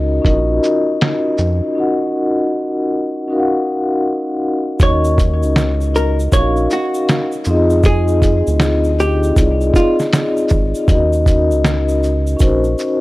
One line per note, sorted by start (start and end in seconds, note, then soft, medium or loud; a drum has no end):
0.00 0.21 C#2 medium
0.00 0.22 C#4 medium
0.00 0.22 D#4 medium
0.00 0.30 F#4 medium
0.00 0.25 A#4 medium
0.00 0.26 D#5 medium
0.22 0.60 A#1 medium
0.22 1.21 C#4 medium
0.22 1.21 D#4 medium
0.22 0.33 F4 medium
0.22 1.23 A#4 medium
0.22 kick medium
0.22 closed hi-hat medium
0.26 1.23 D#5 medium
0.30 1.25 F#4 medium
0.64 shaker medium
1.01 snare loud
1.01 closed hi-hat medium
1.38 1.61 F2 medium
1.38 shaker soft
1.75 2.73 C#4 medium
1.75 2.74 D#4 medium
1.75 2.75 F#4 medium
1.75 2.75 A#4 medium
1.80 2.76 F#5 medium
3.28 4.26 C#4 medium
3.28 4.27 D#4 medium
3.28 4.27 F#4 medium
3.32 4.28 A#4 medium
3.32 3.39 F5 medium
3.39 4.31 F#5 medium
4.79 5.45 D#2 loud
4.79 5.77 C#4 medium
4.79 5.78 D#4 medium
4.79 5.79 F#4 medium
4.79 5.79 A#4 medium
4.79 5.53 C#5 medium
4.79 kick loud
4.79 closed hi-hat medium
4.79 shaker medium
4.84 5.80 D#5 medium
5.04 shaker medium
5.18 kick medium
5.18 closed hi-hat soft
5.18 shaker soft
5.43 6.28 C#2 medium
5.43 shaker soft
5.56 snare loud
5.56 closed hi-hat medium
5.56 shaker medium
5.81 shaker soft
5.95 6.17 A#4 medium
5.95 shaker soft
6.20 shaker soft
6.31 6.68 A#1 medium
6.31 7.29 C#4 medium
6.31 7.29 D#4 medium
6.31 7.30 F#4 medium
6.31 7.31 A#4 medium
6.31 6.67 C#5 medium
6.31 kick medium
6.31 closed hi-hat medium
6.31 shaker medium
6.35 7.31 F5 medium
6.57 shaker soft
6.71 7.30 F#4 medium
6.71 shaker soft
6.71 shaker medium
6.94 shaker medium
7.09 snare loud
7.09 closed hi-hat medium
7.09 shaker medium
7.32 shaker soft
7.44 8.43 F2 medium
7.44 8.69 C4 loud
7.44 8.70 D#4 medium
7.44 8.71 F4 medium
7.44 shaker soft
7.49 8.71 G#4 medium
7.49 8.72 D#5 loud
7.70 shaker medium
7.83 8.95 G#4 medium
7.83 kick loud
7.83 closed hi-hat medium
7.83 shaker medium
8.08 shaker soft
8.22 kick medium
8.22 closed hi-hat soft
8.22 shaker soft
8.47 9.32 D2 loud
8.47 shaker medium
8.60 snare loud
8.60 closed hi-hat medium
8.60 shaker medium
8.84 shaker soft
8.99 9.33 G4 medium
8.99 shaker soft
9.23 shaker soft
9.34 9.72 C2 loud
9.34 10.33 C4 medium
9.34 10.33 D#4 medium
9.34 10.34 F4 medium
9.34 10.34 G#4 medium
9.34 kick medium
9.34 closed hi-hat medium
9.34 shaker medium
9.39 9.46 D5 medium
9.45 10.38 D#5 medium
9.61 shaker soft
9.74 9.97 F4 medium
9.74 kick medium
9.74 shaker soft
9.74 shaker medium
9.99 snare soft
9.99 shaker medium
10.13 snare loud
10.13 closed hi-hat medium
10.13 shaker medium
10.37 shaker soft
10.49 10.74 G#1 medium
10.49 kick medium
10.49 shaker soft
10.75 shaker soft
10.87 11.52 D#2 loud
10.87 11.85 C#4 medium
10.87 11.85 D#4 medium
10.87 11.86 F#4 medium
10.87 11.87 A#4 medium
10.87 kick loud
10.87 closed hi-hat medium
10.87 shaker medium
10.91 11.87 D#5 loud
11.13 shaker soft
11.26 kick medium
11.26 closed hi-hat soft
11.26 shaker soft
11.51 12.36 C#2 medium
11.51 shaker medium
11.65 snare loud
11.65 closed hi-hat medium
11.65 shaker medium
11.89 shaker soft
12.03 shaker soft
12.27 shaker soft
12.37 13.01 C#4 loud
12.37 13.01 D#4 medium
12.37 13.01 F#4 medium
12.37 13.01 A#4 medium
12.37 kick medium
12.37 shaker medium
12.41 12.76 A#1 medium
12.41 13.01 C5 medium
12.41 closed hi-hat medium
12.64 shaker soft
12.78 shaker soft